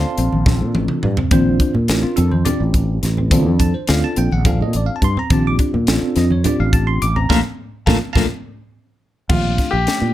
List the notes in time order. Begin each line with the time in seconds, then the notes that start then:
Already playing: C4 D4 F4 A4 C5 F5 A5 C6
0.18 A#1 C4, closed hi-hat
0.32 A#1, high conga
0.46 C4 D4 F4 A4, kick, snare, low conga
0.61 A#2, low conga
0.74 A1, high tom
0.88 mid tom, low conga
1.03 G2, mid tom
1.17 C4, floor tom, low conga
1.31 A#1 C4 D4 F4 C5, kick, closed hi-hat, high conga
1.60 D4, kick, closed hi-hat, low conga
1.74 A#2, low conga
1.88 A1 C4 D4 F4 A#4, snare, closed hi-hat
2.03 F4, muted fretless electric bass stroke
2.16 F2 C4 A4, closed hi-hat
2.31 C5, high conga
2.45 C4 D4 F4 G4 D5, muted fretless electric bass stroke, closed hi-hat, low conga
2.60 A1
2.74 kick, closed hi-hat
3.03 A1, snare, closed hi-hat
3.17 C4, low conga
3.31 C4 D4 F4 A4, kick, closed hi-hat, high conga
3.46 F2
3.59 D4 A5, kick, closed hi-hat
3.74 C5
3.87 D2 C4 D4 F4 A4 F5, snare, closed hi-hat
4.04 A5
4.16 A#1 C4 G5, closed hi-hat
4.32 A#1 F#5, high conga
4.45 C4 D4 F4 A4 F5, kick, closed hi-hat, low conga
4.60 A#2 D#5
4.73 A1 D5, closed hi-hat
4.86 F5
4.96 A5
5.02 G2 C6, kick, closed hi-hat
5.17 C4 A#5, low conga
5.30 A#1 C4 D4 F4 G4 A5, kick, closed hi-hat, high conga
5.47 D6
5.59 D4, kick, closed hi-hat
5.74 A#2, low conga
5.87 A1 C4 D4 F4 A4, snare, closed hi-hat
6.16 F2 C4 D#5, snare, closed hi-hat
6.30 C#5, high conga
6.44 C4 D4 F4 G4 D5, muted fretless electric bass stroke, closed hi-hat, low conga
6.60 A1 F5
6.73 A5, kick, closed hi-hat
6.87 C6
7.02 A1 D6, closed hi-hat
7.16 C4 A#5, low conga
7.29 A#1 A3 A#3 D4 F4 A4 A#4 F5 A5 A#5, kick, snare, low conga
7.86 A#1 A3 A#3 D4 F4 A4 A#4 F5 A5 A#5, kick, snare, low conga
8.13 A#1 A#3 D4 F4 A4 A#4 F5 A5 A#5, kick, snare, low conga
8.17 A3
9.29 A#1 A3 C4 D4 F4 G4, kick, crash, high conga, low conga
9.58 D4, kick, snare, closed hi-hat
9.71 A#1 G4
9.87 A3 C4 D4 G4, snare, closed hi-hat
10.01 A#2